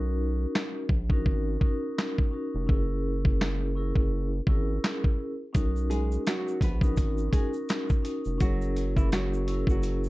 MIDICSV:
0, 0, Header, 1, 5, 480
1, 0, Start_track
1, 0, Key_signature, 5, "major"
1, 0, Tempo, 714286
1, 1808, Time_signature, 4, 2, 24, 8
1, 6781, End_track
2, 0, Start_track
2, 0, Title_t, "Vibraphone"
2, 0, Program_c, 0, 11
2, 0, Note_on_c, 0, 61, 87
2, 0, Note_on_c, 0, 63, 79
2, 0, Note_on_c, 0, 66, 85
2, 0, Note_on_c, 0, 70, 96
2, 552, Note_off_c, 0, 61, 0
2, 554, Note_off_c, 0, 63, 0
2, 558, Note_off_c, 0, 66, 0
2, 561, Note_off_c, 0, 70, 0
2, 737, Note_on_c, 0, 61, 97
2, 743, Note_on_c, 0, 63, 86
2, 750, Note_on_c, 0, 66, 91
2, 756, Note_on_c, 0, 70, 105
2, 1059, Note_off_c, 0, 61, 0
2, 1062, Note_off_c, 0, 63, 0
2, 1066, Note_off_c, 0, 66, 0
2, 1069, Note_off_c, 0, 70, 0
2, 1076, Note_on_c, 0, 61, 88
2, 1082, Note_on_c, 0, 63, 84
2, 1088, Note_on_c, 0, 66, 76
2, 1094, Note_on_c, 0, 70, 102
2, 1529, Note_off_c, 0, 61, 0
2, 1533, Note_off_c, 0, 63, 0
2, 1536, Note_off_c, 0, 66, 0
2, 1539, Note_off_c, 0, 70, 0
2, 1552, Note_on_c, 0, 61, 81
2, 1558, Note_on_c, 0, 63, 73
2, 1565, Note_on_c, 0, 66, 66
2, 1571, Note_on_c, 0, 70, 80
2, 1784, Note_off_c, 0, 61, 0
2, 1787, Note_off_c, 0, 63, 0
2, 1790, Note_off_c, 0, 66, 0
2, 1791, Note_on_c, 0, 61, 90
2, 1794, Note_off_c, 0, 70, 0
2, 1797, Note_on_c, 0, 64, 84
2, 1804, Note_on_c, 0, 68, 85
2, 1810, Note_on_c, 0, 70, 97
2, 2470, Note_off_c, 0, 61, 0
2, 2474, Note_off_c, 0, 64, 0
2, 2477, Note_off_c, 0, 68, 0
2, 2480, Note_off_c, 0, 70, 0
2, 2522, Note_on_c, 0, 61, 92
2, 2528, Note_on_c, 0, 64, 89
2, 2534, Note_on_c, 0, 68, 87
2, 2540, Note_on_c, 0, 70, 95
2, 2870, Note_off_c, 0, 61, 0
2, 2873, Note_off_c, 0, 64, 0
2, 2876, Note_off_c, 0, 68, 0
2, 2879, Note_off_c, 0, 70, 0
2, 3006, Note_on_c, 0, 61, 87
2, 3013, Note_on_c, 0, 64, 81
2, 3019, Note_on_c, 0, 68, 83
2, 3025, Note_on_c, 0, 70, 99
2, 3570, Note_off_c, 0, 61, 0
2, 3573, Note_off_c, 0, 64, 0
2, 3576, Note_off_c, 0, 68, 0
2, 3579, Note_off_c, 0, 70, 0
2, 3716, Note_on_c, 0, 61, 85
2, 3722, Note_on_c, 0, 63, 84
2, 3728, Note_on_c, 0, 66, 84
2, 3735, Note_on_c, 0, 70, 93
2, 4393, Note_off_c, 0, 61, 0
2, 4396, Note_off_c, 0, 63, 0
2, 4399, Note_off_c, 0, 66, 0
2, 4403, Note_off_c, 0, 70, 0
2, 4579, Note_on_c, 0, 61, 96
2, 4585, Note_on_c, 0, 63, 86
2, 4592, Note_on_c, 0, 66, 86
2, 4598, Note_on_c, 0, 70, 108
2, 4900, Note_off_c, 0, 61, 0
2, 4903, Note_off_c, 0, 63, 0
2, 4907, Note_off_c, 0, 66, 0
2, 4910, Note_off_c, 0, 70, 0
2, 4917, Note_on_c, 0, 61, 91
2, 4924, Note_on_c, 0, 63, 82
2, 4930, Note_on_c, 0, 66, 81
2, 4936, Note_on_c, 0, 70, 103
2, 5370, Note_off_c, 0, 61, 0
2, 5373, Note_off_c, 0, 63, 0
2, 5376, Note_off_c, 0, 66, 0
2, 5379, Note_off_c, 0, 70, 0
2, 5394, Note_on_c, 0, 61, 82
2, 5400, Note_on_c, 0, 63, 71
2, 5407, Note_on_c, 0, 66, 66
2, 5413, Note_on_c, 0, 70, 80
2, 5625, Note_off_c, 0, 61, 0
2, 5628, Note_off_c, 0, 63, 0
2, 5631, Note_off_c, 0, 66, 0
2, 5632, Note_on_c, 0, 61, 90
2, 5634, Note_off_c, 0, 70, 0
2, 5638, Note_on_c, 0, 64, 85
2, 5644, Note_on_c, 0, 68, 84
2, 5651, Note_on_c, 0, 70, 96
2, 6311, Note_off_c, 0, 61, 0
2, 6314, Note_off_c, 0, 64, 0
2, 6317, Note_off_c, 0, 68, 0
2, 6320, Note_off_c, 0, 70, 0
2, 6363, Note_on_c, 0, 61, 94
2, 6369, Note_on_c, 0, 64, 92
2, 6375, Note_on_c, 0, 68, 91
2, 6382, Note_on_c, 0, 70, 99
2, 6710, Note_off_c, 0, 61, 0
2, 6713, Note_off_c, 0, 64, 0
2, 6716, Note_off_c, 0, 68, 0
2, 6720, Note_off_c, 0, 70, 0
2, 6781, End_track
3, 0, Start_track
3, 0, Title_t, "Nylon-string guitar"
3, 0, Program_c, 1, 24
3, 3964, Note_on_c, 1, 68, 78
3, 3970, Note_on_c, 1, 56, 63
3, 4182, Note_off_c, 1, 68, 0
3, 4185, Note_off_c, 1, 56, 0
3, 4213, Note_on_c, 1, 66, 82
3, 4218, Note_on_c, 1, 54, 62
3, 4427, Note_off_c, 1, 66, 0
3, 4429, Note_off_c, 1, 54, 0
3, 4457, Note_on_c, 1, 71, 77
3, 4462, Note_on_c, 1, 59, 59
3, 4669, Note_off_c, 1, 71, 0
3, 4672, Note_off_c, 1, 59, 0
3, 4924, Note_on_c, 1, 68, 80
3, 4929, Note_on_c, 1, 56, 59
3, 5050, Note_off_c, 1, 68, 0
3, 5053, Note_off_c, 1, 56, 0
3, 5652, Note_on_c, 1, 66, 98
3, 5656, Note_on_c, 1, 54, 75
3, 6005, Note_off_c, 1, 66, 0
3, 6008, Note_off_c, 1, 54, 0
3, 6025, Note_on_c, 1, 64, 80
3, 6031, Note_on_c, 1, 52, 55
3, 6117, Note_off_c, 1, 64, 0
3, 6121, Note_off_c, 1, 52, 0
3, 6133, Note_on_c, 1, 66, 89
3, 6139, Note_on_c, 1, 54, 65
3, 6486, Note_off_c, 1, 66, 0
3, 6489, Note_off_c, 1, 54, 0
3, 6519, Note_on_c, 1, 66, 65
3, 6524, Note_on_c, 1, 54, 57
3, 6781, Note_off_c, 1, 54, 0
3, 6781, Note_off_c, 1, 66, 0
3, 6781, End_track
4, 0, Start_track
4, 0, Title_t, "Analog synth bass"
4, 0, Program_c, 2, 38
4, 0, Note_on_c, 2, 35, 110
4, 311, Note_off_c, 2, 35, 0
4, 602, Note_on_c, 2, 34, 88
4, 848, Note_on_c, 2, 32, 100
4, 858, Note_off_c, 2, 34, 0
4, 1059, Note_off_c, 2, 32, 0
4, 1711, Note_on_c, 2, 29, 92
4, 1799, Note_off_c, 2, 29, 0
4, 1810, Note_on_c, 2, 30, 108
4, 2640, Note_off_c, 2, 30, 0
4, 2660, Note_on_c, 2, 30, 86
4, 2963, Note_off_c, 2, 30, 0
4, 3005, Note_on_c, 2, 32, 98
4, 3218, Note_off_c, 2, 32, 0
4, 3731, Note_on_c, 2, 35, 112
4, 4152, Note_off_c, 2, 35, 0
4, 4443, Note_on_c, 2, 34, 93
4, 4689, Note_on_c, 2, 32, 104
4, 4699, Note_off_c, 2, 34, 0
4, 4899, Note_off_c, 2, 32, 0
4, 5551, Note_on_c, 2, 29, 90
4, 5639, Note_off_c, 2, 29, 0
4, 5651, Note_on_c, 2, 30, 109
4, 6481, Note_off_c, 2, 30, 0
4, 6501, Note_on_c, 2, 30, 86
4, 6781, Note_off_c, 2, 30, 0
4, 6781, End_track
5, 0, Start_track
5, 0, Title_t, "Drums"
5, 372, Note_on_c, 9, 38, 115
5, 374, Note_on_c, 9, 39, 89
5, 439, Note_off_c, 9, 38, 0
5, 442, Note_off_c, 9, 39, 0
5, 600, Note_on_c, 9, 36, 95
5, 667, Note_off_c, 9, 36, 0
5, 737, Note_on_c, 9, 36, 101
5, 804, Note_off_c, 9, 36, 0
5, 846, Note_on_c, 9, 36, 92
5, 913, Note_off_c, 9, 36, 0
5, 1083, Note_on_c, 9, 36, 98
5, 1150, Note_off_c, 9, 36, 0
5, 1334, Note_on_c, 9, 38, 117
5, 1337, Note_on_c, 9, 39, 92
5, 1402, Note_off_c, 9, 38, 0
5, 1404, Note_off_c, 9, 39, 0
5, 1468, Note_on_c, 9, 36, 99
5, 1535, Note_off_c, 9, 36, 0
5, 1807, Note_on_c, 9, 36, 112
5, 1875, Note_off_c, 9, 36, 0
5, 2184, Note_on_c, 9, 36, 103
5, 2251, Note_off_c, 9, 36, 0
5, 2293, Note_on_c, 9, 38, 108
5, 2296, Note_on_c, 9, 39, 91
5, 2361, Note_off_c, 9, 38, 0
5, 2363, Note_off_c, 9, 39, 0
5, 2658, Note_on_c, 9, 36, 105
5, 2725, Note_off_c, 9, 36, 0
5, 3003, Note_on_c, 9, 36, 99
5, 3070, Note_off_c, 9, 36, 0
5, 3254, Note_on_c, 9, 38, 115
5, 3256, Note_on_c, 9, 39, 98
5, 3321, Note_off_c, 9, 38, 0
5, 3324, Note_off_c, 9, 39, 0
5, 3388, Note_on_c, 9, 36, 96
5, 3455, Note_off_c, 9, 36, 0
5, 3726, Note_on_c, 9, 42, 91
5, 3728, Note_on_c, 9, 36, 111
5, 3733, Note_on_c, 9, 82, 61
5, 3793, Note_off_c, 9, 42, 0
5, 3796, Note_off_c, 9, 36, 0
5, 3800, Note_off_c, 9, 82, 0
5, 3872, Note_on_c, 9, 82, 50
5, 3939, Note_off_c, 9, 82, 0
5, 3970, Note_on_c, 9, 42, 72
5, 3971, Note_on_c, 9, 82, 52
5, 4037, Note_off_c, 9, 42, 0
5, 4038, Note_off_c, 9, 82, 0
5, 4112, Note_on_c, 9, 82, 54
5, 4179, Note_off_c, 9, 82, 0
5, 4211, Note_on_c, 9, 42, 93
5, 4213, Note_on_c, 9, 82, 63
5, 4215, Note_on_c, 9, 38, 111
5, 4218, Note_on_c, 9, 39, 92
5, 4278, Note_off_c, 9, 42, 0
5, 4280, Note_off_c, 9, 82, 0
5, 4282, Note_off_c, 9, 38, 0
5, 4285, Note_off_c, 9, 39, 0
5, 4353, Note_on_c, 9, 82, 48
5, 4420, Note_off_c, 9, 82, 0
5, 4441, Note_on_c, 9, 36, 96
5, 4450, Note_on_c, 9, 42, 75
5, 4508, Note_off_c, 9, 36, 0
5, 4517, Note_off_c, 9, 42, 0
5, 4578, Note_on_c, 9, 36, 102
5, 4592, Note_on_c, 9, 82, 49
5, 4646, Note_off_c, 9, 36, 0
5, 4659, Note_off_c, 9, 82, 0
5, 4682, Note_on_c, 9, 82, 76
5, 4687, Note_on_c, 9, 36, 93
5, 4688, Note_on_c, 9, 42, 84
5, 4749, Note_off_c, 9, 82, 0
5, 4754, Note_off_c, 9, 36, 0
5, 4755, Note_off_c, 9, 42, 0
5, 4824, Note_on_c, 9, 82, 49
5, 4891, Note_off_c, 9, 82, 0
5, 4923, Note_on_c, 9, 36, 96
5, 4927, Note_on_c, 9, 42, 80
5, 4991, Note_off_c, 9, 36, 0
5, 4994, Note_off_c, 9, 42, 0
5, 5064, Note_on_c, 9, 82, 50
5, 5131, Note_off_c, 9, 82, 0
5, 5168, Note_on_c, 9, 42, 88
5, 5168, Note_on_c, 9, 82, 76
5, 5175, Note_on_c, 9, 38, 120
5, 5178, Note_on_c, 9, 39, 95
5, 5235, Note_off_c, 9, 42, 0
5, 5235, Note_off_c, 9, 82, 0
5, 5242, Note_off_c, 9, 38, 0
5, 5245, Note_off_c, 9, 39, 0
5, 5306, Note_on_c, 9, 82, 53
5, 5309, Note_on_c, 9, 36, 100
5, 5373, Note_off_c, 9, 82, 0
5, 5376, Note_off_c, 9, 36, 0
5, 5408, Note_on_c, 9, 42, 74
5, 5409, Note_on_c, 9, 82, 47
5, 5475, Note_off_c, 9, 42, 0
5, 5477, Note_off_c, 9, 82, 0
5, 5543, Note_on_c, 9, 82, 53
5, 5610, Note_off_c, 9, 82, 0
5, 5647, Note_on_c, 9, 42, 90
5, 5649, Note_on_c, 9, 36, 117
5, 5651, Note_on_c, 9, 82, 60
5, 5714, Note_off_c, 9, 42, 0
5, 5716, Note_off_c, 9, 36, 0
5, 5718, Note_off_c, 9, 82, 0
5, 5790, Note_on_c, 9, 82, 51
5, 5858, Note_off_c, 9, 82, 0
5, 5890, Note_on_c, 9, 42, 72
5, 5890, Note_on_c, 9, 82, 52
5, 5957, Note_off_c, 9, 42, 0
5, 5957, Note_off_c, 9, 82, 0
5, 6025, Note_on_c, 9, 36, 99
5, 6031, Note_on_c, 9, 82, 55
5, 6092, Note_off_c, 9, 36, 0
5, 6098, Note_off_c, 9, 82, 0
5, 6130, Note_on_c, 9, 42, 92
5, 6134, Note_on_c, 9, 38, 113
5, 6134, Note_on_c, 9, 82, 59
5, 6137, Note_on_c, 9, 39, 90
5, 6197, Note_off_c, 9, 42, 0
5, 6201, Note_off_c, 9, 38, 0
5, 6201, Note_off_c, 9, 82, 0
5, 6204, Note_off_c, 9, 39, 0
5, 6274, Note_on_c, 9, 82, 49
5, 6341, Note_off_c, 9, 82, 0
5, 6369, Note_on_c, 9, 42, 74
5, 6436, Note_off_c, 9, 42, 0
5, 6498, Note_on_c, 9, 36, 104
5, 6514, Note_on_c, 9, 82, 49
5, 6566, Note_off_c, 9, 36, 0
5, 6581, Note_off_c, 9, 82, 0
5, 6604, Note_on_c, 9, 82, 75
5, 6608, Note_on_c, 9, 42, 85
5, 6671, Note_off_c, 9, 82, 0
5, 6675, Note_off_c, 9, 42, 0
5, 6747, Note_on_c, 9, 82, 49
5, 6781, Note_off_c, 9, 82, 0
5, 6781, End_track
0, 0, End_of_file